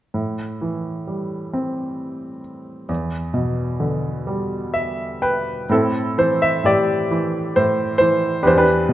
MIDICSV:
0, 0, Header, 1, 2, 480
1, 0, Start_track
1, 0, Key_signature, 0, "minor"
1, 0, Tempo, 944882
1, 75, Time_signature, 6, 3, 24, 8
1, 553, Tempo, 906344
1, 1993, Tempo, 943396
1, 3433, Tempo, 898204
1, 4658, End_track
2, 0, Start_track
2, 0, Title_t, "Grand piano"
2, 0, Program_c, 0, 0
2, 71, Note_on_c, 0, 45, 33
2, 183, Control_c, 0, 64, 127
2, 312, Note_on_c, 0, 52, 26
2, 545, Note_on_c, 0, 55, 24
2, 789, Note_on_c, 0, 60, 31
2, 1244, Note_off_c, 0, 52, 0
2, 1483, Note_off_c, 0, 55, 0
2, 1485, Note_off_c, 0, 45, 0
2, 1486, Note_off_c, 0, 60, 0
2, 1506, Note_on_c, 0, 40, 41
2, 1516, Control_c, 0, 64, 0
2, 1610, Control_c, 0, 64, 127
2, 1744, Note_on_c, 0, 47, 30
2, 1989, Note_on_c, 0, 50, 33
2, 2228, Note_on_c, 0, 55, 33
2, 2465, Note_on_c, 0, 76, 49
2, 2684, Note_off_c, 0, 47, 0
2, 2690, Note_off_c, 0, 76, 0
2, 2711, Note_on_c, 0, 79, 46
2, 2713, Note_on_c, 0, 71, 58
2, 2930, Note_off_c, 0, 50, 0
2, 2931, Note_off_c, 0, 40, 0
2, 2931, Note_off_c, 0, 55, 0
2, 2937, Note_off_c, 0, 79, 0
2, 2953, Note_on_c, 0, 45, 45
2, 2959, Control_c, 0, 64, 0
2, 2962, Note_off_c, 0, 71, 0
2, 2962, Note_on_c, 0, 60, 38
2, 2963, Note_on_c, 0, 64, 41
2, 2965, Note_on_c, 0, 69, 56
2, 3048, Control_c, 0, 64, 127
2, 3186, Note_off_c, 0, 69, 0
2, 3200, Note_on_c, 0, 52, 32
2, 3203, Note_on_c, 0, 72, 56
2, 3322, Note_on_c, 0, 76, 61
2, 3323, Note_off_c, 0, 72, 0
2, 3425, Note_off_c, 0, 45, 0
2, 3430, Note_off_c, 0, 76, 0
2, 3433, Note_on_c, 0, 45, 36
2, 3441, Note_on_c, 0, 67, 49
2, 3444, Note_on_c, 0, 74, 67
2, 3664, Note_off_c, 0, 60, 0
2, 3665, Note_off_c, 0, 64, 0
2, 3677, Note_off_c, 0, 52, 0
2, 3685, Note_on_c, 0, 52, 37
2, 3919, Note_off_c, 0, 45, 0
2, 3926, Note_on_c, 0, 72, 60
2, 3927, Note_on_c, 0, 45, 40
2, 3942, Note_off_c, 0, 74, 0
2, 4143, Note_off_c, 0, 72, 0
2, 4144, Note_off_c, 0, 67, 0
2, 4151, Note_on_c, 0, 72, 67
2, 4158, Note_off_c, 0, 52, 0
2, 4166, Note_on_c, 0, 52, 39
2, 4387, Note_off_c, 0, 45, 0
2, 4390, Note_on_c, 0, 67, 42
2, 4390, Note_on_c, 0, 71, 58
2, 4391, Note_on_c, 0, 62, 43
2, 4393, Note_off_c, 0, 52, 0
2, 4400, Note_off_c, 0, 72, 0
2, 4402, Note_on_c, 0, 40, 50
2, 4404, Control_c, 0, 64, 0
2, 4413, Note_on_c, 0, 72, 56
2, 4430, Note_off_c, 0, 71, 0
2, 4458, Note_off_c, 0, 72, 0
2, 4459, Note_off_c, 0, 62, 0
2, 4461, Note_off_c, 0, 67, 0
2, 4467, Note_on_c, 0, 62, 44
2, 4469, Note_on_c, 0, 67, 50
2, 4470, Note_on_c, 0, 71, 61
2, 4497, Control_c, 0, 64, 127
2, 4635, Note_on_c, 0, 47, 41
2, 4658, Note_off_c, 0, 40, 0
2, 4658, Note_off_c, 0, 47, 0
2, 4658, Note_off_c, 0, 62, 0
2, 4658, Note_off_c, 0, 67, 0
2, 4658, Note_off_c, 0, 71, 0
2, 4658, End_track
0, 0, End_of_file